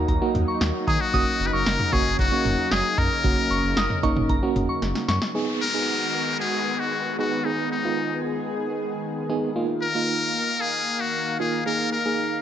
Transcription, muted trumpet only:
0.87 G#4
1.01 F#4
1.46 B4
1.53 A#4
1.93 G#4
2.19 F#4
2.72 G#4
2.98 A#4
5.61 A#4
6.40 G#4
6.79 F#4
7.19 F#4
7.45 D#4
7.72 D#4
9.82 A#4
10.61 G#4
11.00 F#4
11.40 G#4
11.66 A#4
11.92 A#4

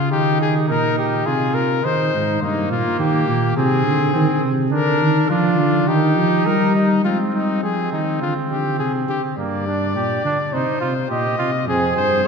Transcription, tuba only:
Already playing: C#3
0.12 D#3
0.70 A#2
1.27 C3
1.85 D#3
2.14 G#2
2.42 G2
2.70 A#2
2.99 D#3
3.28 A#2
3.57 C3
3.86 D3
4.16 D#3
4.43 C3
4.72 D3
5.01 D#3
5.30 F3
5.59 D3
5.88 D#3
6.17 F3
6.47 G3
7.04 G#3
7.34 G3
7.63 F3
7.92 D#3
8.22 D3
8.51 D3
8.79 C3
9.08 D3
9.37 G2
9.95 A#2
10.24 D3
10.53 C3
10.82 C3
11.10 A#2
11.39 C3
11.68 F2
11.97 G2

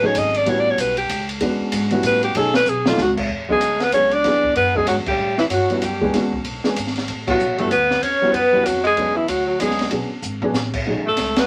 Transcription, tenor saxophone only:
3.49 G#3
3.80 B3
3.93 C#4
4.13 D4
4.56 B3
4.75 G#3
4.87 F#3
5.07 G3
5.38 E3
5.50 F#3
5.82 G3
7.27 F#3
7.58 A3
7.71 B3
8.02 C#4
8.32 B3
8.65 F#3
8.84 G#3
9.15 E3
9.28 F#3
9.46 F#3
9.59 G#3
11.06 A3
11.39 B3

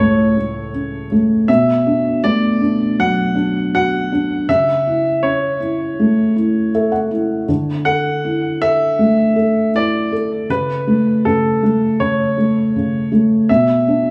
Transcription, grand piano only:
Already playing: C#5
1.48 E5
2.24 D5
3.00 F#5
3.75 F#5
4.49 E5
5.23 C#5
7.85 F#5
8.62 E5
9.76 D5
10.50 B4
11.25 A4
12.00 C#5
13.49 E5

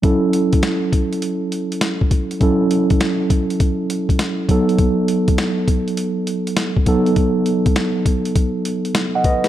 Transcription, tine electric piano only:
0.02 F#3 C#4 E4 A4
2.40 F#3 C#4 E4 A4
4.49 F#3 B3 D#4 A4
6.86 F#3 B3 D#4 A4
9.15 D#5 F#5
9.25 B4 D#5
9.45 B4

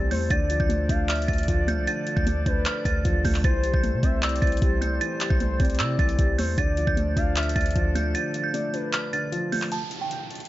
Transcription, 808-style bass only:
Already playing: C2
0.11 E2
0.30 D2
0.60 D2
0.89 D2
1.28 D2
1.48 D2
1.78 C2
2.17 D2
2.46 D2
2.85 D2
3.05 D2
3.25 D2
3.44 C2
3.74 C2
3.93 C3
4.03 C2
4.42 C2
4.62 C2
5.30 C2
5.60 C2
5.79 C3
5.99 C2
6.19 C2
6.38 E2
6.58 D2
6.87 D2
7.17 D2
7.56 D2
7.76 D2

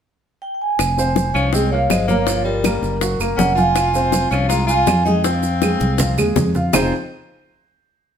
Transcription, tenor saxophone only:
1.34 C#4
1.53 C4
1.72 A#3
1.90 G#3
2.08 A#3
2.44 G3
3.37 C#4
3.55 F4
4.31 C#4
4.49 F4
4.67 F4
5.05 D#4
5.24 C4

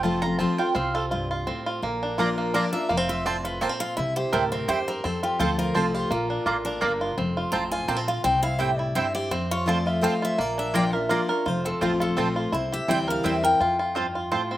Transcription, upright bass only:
Already playing: F1
0.75 C2
1.83 A#1
2.90 F1
3.98 C2
4.33 D2
4.68 E2
5.05 F2
5.39 D2
5.75 C2
6.11 A#1
6.46 A1
6.82 G1
7.18 F1
7.53 A1
7.88 A#1
8.24 C2
9.31 F2
10.39 A#1
11.46 F1
11.81 A1
12.17 A#1
12.53 C2
12.88 D2
13.25 E2
13.60 F2

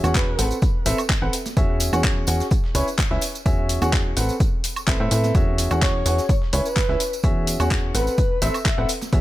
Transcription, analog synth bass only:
0.04 E2
0.39 A1
0.86 A1
1.22 A1
1.57 E2
1.93 E2
2.28 E2
2.75 C#2
3.11 C#2
3.46 E2
3.82 E2
4.17 A1
4.88 A1
5.00 A2
5.11 A2
5.35 E2
5.71 E2
6.06 E2
6.53 C#2
6.89 C#2
7.24 E2
7.60 E2
7.95 A1
8.42 A1
8.78 A1
9.13 E2

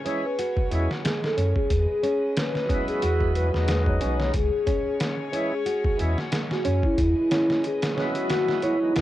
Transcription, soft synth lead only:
0.24 B4
1.24 A4
1.56 G#4
1.90 G#4
2.38 B4
2.88 G#4
3.36 B4
3.87 C#5
4.35 G#4
5.52 G#4
6.51 F#4
6.85 E4
7.17 E4
7.65 G#4
8.15 F#4
8.64 E4

